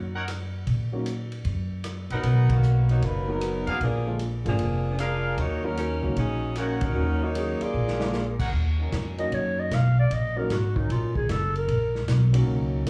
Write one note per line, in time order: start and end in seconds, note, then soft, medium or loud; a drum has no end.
0.00 0.63 F#2 medium
0.14 0.23 D#4 medium
0.14 0.23 A#4 medium
0.14 0.23 C#5 medium
0.14 0.23 F#5 medium
0.28 cross-stick medium
0.28 hi-hat pedal medium
0.28 ride medium
0.67 1.41 A#2 medium
0.67 kick soft
0.67 ride medium
0.92 1.04 D#3 medium
0.92 1.05 F#3 medium
0.92 1.05 A#3 medium
0.92 1.05 C#4 medium
0.92 1.05 F#4 medium
1.06 hi-hat pedal soft
1.06 ride medium
1.32 ride soft
1.45 2.06 F#2 medium
1.45 kick soft
1.45 ride medium
1.84 cross-stick medium
1.84 hi-hat pedal medium
1.84 ride medium
2.10 2.23 A#1 medium
2.10 2.48 F#3 medium
2.10 2.60 B3 medium
2.10 2.48 B3 medium
2.10 2.60 D#4 medium
2.10 2.48 D#4 medium
2.10 2.60 A#4 medium
2.10 2.48 A#4 medium
2.10 2.60 F#5 medium
2.10 ride soft
2.23 2.98 B1 medium
2.23 kick soft
2.23 ride medium
2.49 2.88 D#3 medium
2.49 2.88 A#3 medium
2.49 2.88 B3 medium
2.49 2.88 F#4 medium
2.49 kick medium
2.49 ride medium
2.63 hi-hat pedal medium
2.89 3.03 A#3 medium
2.89 3.03 D#4 medium
2.89 3.03 F#4 medium
2.89 3.03 C#5 medium
2.89 ride soft
3.02 3.63 F#1 medium
3.02 3.29 F#3 medium
3.02 3.29 A#3 medium
3.02 3.29 D#4 medium
3.02 3.29 B4 medium
3.02 kick soft
3.02 ride medium
3.27 3.78 D#3 medium
3.27 3.78 F#3 medium
3.27 3.69 F#3 medium
3.27 3.78 B3 medium
3.27 3.68 B3 medium
3.27 3.69 D#4 medium
3.27 3.79 F#4 medium
3.27 3.78 A#4 medium
3.27 3.69 A#4 medium
3.41 cross-stick medium
3.41 hi-hat pedal medium
3.41 ride medium
3.67 3.79 F2 medium
3.67 3.82 D#3 medium
3.67 3.81 A#3 medium
3.67 3.82 B3 medium
3.67 3.76 D4 medium
3.67 3.82 F#4 medium
3.67 3.76 G#4 medium
3.67 3.76 A#4 medium
3.67 3.76 F5 loud
3.67 ride soft
3.81 4.42 A#1 medium
3.81 4.19 F3 medium
3.81 4.18 A#3 medium
3.81 4.18 D4 medium
3.81 4.18 G#4 medium
3.81 kick soft
3.81 ride medium
4.06 4.19 D3 medium
4.06 4.19 F3 soft
4.06 4.19 G#3 medium
4.06 4.19 A#3 soft
4.06 4.20 F4 medium
4.19 hi-hat pedal soft
4.19 ride medium
4.44 4.58 G#1 medium
4.44 4.57 D3 medium
4.44 4.58 F3 medium
4.44 4.96 F3 medium
4.44 4.58 G#3 soft
4.44 4.58 A#3 medium
4.44 4.96 A#3 medium
4.44 4.96 D4 medium
4.44 4.58 F4 medium
4.44 ride soft
4.48 4.96 G#4 medium
4.59 5.34 F1 medium
4.59 kick soft
4.59 ride medium
4.98 5.39 G#3 medium
4.98 5.38 D4 medium
4.98 5.39 D4 medium
4.98 5.38 F4 medium
4.98 5.38 G#4 medium
4.98 5.38 A#4 medium
4.98 5.39 A#4 medium
4.98 5.38 F5 medium
4.98 cross-stick medium
4.98 hi-hat pedal medium
4.98 ride medium
5.38 5.99 D#2 medium
5.38 5.65 A#3 medium
5.38 5.64 D#4 medium
5.38 5.65 F#4 medium
5.38 5.65 C#5 medium
5.38 kick soft
5.38 ride medium
5.63 5.75 D#3 medium
5.63 5.75 F#3 medium
5.63 5.77 F#3 medium
5.63 5.76 A#3 medium
5.63 5.76 C#4 medium
5.63 5.77 C#4 medium
5.63 5.77 D#4 medium
5.63 5.76 F#4 medium
5.63 5.77 A#4 medium
5.77 6.14 F#3 medium
5.77 6.14 C#4 medium
5.77 6.14 D#4 medium
5.77 6.15 A#4 medium
5.77 hi-hat pedal soft
5.77 ride medium
6.01 6.15 C#2 medium
6.01 6.14 D#3 medium
6.01 6.15 F#3 medium
6.01 6.15 A#3 medium
6.01 6.15 C#4 medium
6.01 6.15 F#4 medium
6.16 6.91 A#1 medium
6.16 6.54 F#3 medium
6.16 6.54 C#4 medium
6.16 6.54 D#4 medium
6.16 6.54 G#4 medium
6.16 kick soft
6.16 ride medium
6.55 6.82 D#3 medium
6.55 6.82 A#3 medium
6.55 6.81 C#4 medium
6.55 7.16 D#4 medium
6.55 6.81 F#4 medium
6.55 7.16 A#4 medium
6.55 7.16 C#5 medium
6.55 7.16 F#5 medium
6.55 cross-stick medium
6.55 hi-hat pedal medium
6.55 ride medium
6.81 7.23 F#3 medium
6.81 7.22 C#4 medium
6.81 7.22 D#4 medium
6.81 7.22 A#4 loud
6.81 kick medium
6.81 ride medium
6.95 7.57 D#2 medium
6.95 7.18 D#3 medium
6.95 7.18 F#3 soft
6.95 7.19 A#3 medium
6.95 7.19 C#4 medium
6.95 7.19 F#4 medium
7.23 7.61 A#3 medium
7.23 7.62 D#4 medium
7.23 7.62 F#4 medium
7.23 7.62 C#5 medium
7.34 7.58 D#3 medium
7.34 7.58 F#3 soft
7.34 7.58 A#3 soft
7.34 7.59 C#4 soft
7.34 7.59 G#4 medium
7.34 hi-hat pedal soft
7.34 ride medium
7.60 8.40 A#3 medium
7.60 8.40 F4 medium
7.60 8.40 G#4 medium
7.60 8.40 D5 medium
7.60 muted upright bass stroke soft
7.60 ride medium
7.74 8.49 A#1 medium
7.88 snare medium
7.99 8.12 D3 medium
7.99 8.12 F3 medium
7.99 8.12 G#3 medium
7.99 8.12 A#3 medium
7.99 8.13 F4 medium
7.99 snare medium
8.13 snare medium
8.13 hi-hat pedal medium
8.39 8.48 D#4 medium
8.39 8.48 A#4 medium
8.39 8.48 C#5 medium
8.39 8.48 F#5 medium
8.39 kick medium
8.39 crash medium
8.53 8.91 D#2 medium
8.53 kick soft
8.79 9.16 F#3 medium
8.79 9.16 C#4 medium
8.79 9.16 D#4 medium
8.79 9.16 A#4 medium
8.92 9.30 F2 medium
8.92 kick soft
8.92 snare medium
8.92 hi-hat pedal medium
8.92 ride medium
9.17 9.68 D#3 medium
9.17 9.27 F#3 medium
9.17 9.68 F#3 medium
9.17 9.68 A#3 medium
9.17 9.27 C#4 medium
9.17 9.69 C#4 medium
9.17 9.27 D#4 medium
9.17 9.69 F#4 medium
9.17 9.27 A#4 medium
9.17 9.36 D#5 medium
9.17 ride soft
9.32 9.70 F#2 medium
9.32 9.61 C#5 medium
9.32 kick soft
9.32 ride medium
9.60 9.76 D#5 medium
9.71 10.09 B1 medium
9.71 9.99 F5 loud
9.71 kick soft
9.71 snare medium
9.71 hi-hat pedal medium
9.71 ride medium
9.99 10.15 D5 medium
10.10 10.48 A#1 medium
10.10 10.39 D#5 medium
10.10 kick soft
10.10 ride medium
10.35 10.48 D#3 medium
10.35 10.48 F#3 medium
10.35 10.48 A#3 soft
10.35 10.49 C#4 soft
10.35 10.49 F#4 medium
10.35 10.54 A#4 medium
10.50 10.88 G#1 medium
10.50 10.78 F#4 medium
10.50 kick soft
10.50 snare medium
10.50 hi-hat pedal medium
10.50 ride medium
10.74 11.26 F#3 medium
10.74 11.25 C#4 medium
10.74 11.25 D#4 medium
10.74 10.93 D#4 medium
10.74 11.26 A#4 medium
10.74 kick medium
10.89 11.27 A#1 medium
10.89 11.16 F4 medium
10.89 kick soft
10.89 ride medium
11.15 11.33 G#4 medium
11.15 kick medium
11.29 11.67 F#1 medium
11.29 11.56 A4 medium
11.29 kick soft
11.29 snare medium
11.29 hi-hat pedal medium
11.29 ride medium
11.55 12.04 A#4 medium
11.55 ride soft
11.68 12.06 A#1 medium
11.68 kick soft
11.68 ride medium
11.95 snare soft
12.08 12.46 B1 medium
12.08 kick soft
12.08 snare medium
12.08 hi-hat pedal medium
12.08 ride medium
12.32 12.83 D#3 medium
12.32 12.83 F#3 medium
12.32 12.83 A#3 medium
12.32 12.83 C#4 medium
12.32 12.83 D#4 medium
12.32 12.84 F#4 medium
12.32 12.83 A#4 loud
12.32 ride medium
12.47 12.85 C#2 medium
12.47 kick soft
12.86 12.90 D#2 medium
12.86 kick soft
12.86 snare medium
12.86 hi-hat pedal medium
12.86 ride medium